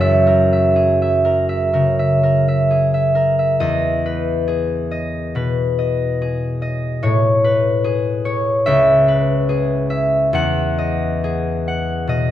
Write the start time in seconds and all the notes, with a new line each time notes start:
Already playing: F#1 F#2 G#4 A#4 C#5
0.01 E5
0.27 A#4
0.53 E5
0.76 G#4
1.02 E5
1.25 A#4
1.49 E5
1.73 C#3 A#4
1.99 E5
2.23 A#4
2.48 E5
2.71 G#4
2.94 E5
3.15 A#4
3.39 E5
3.60 E2 D#5
4.06 B4
4.48 G#4
4.91 D#5
5.35 B2 B4
5.79 D#5
6.22 G#4
6.62 D#5
7.03 A2 C#5
7.44 B4
7.84 G#4
8.25 C#5
8.66 C#2 E5
9.08 B4
9.49 G#4
9.90 E5
10.33 E2 F#5
10.78 D#5
11.24 G#4
11.68 F#5
12.07 B2 D#5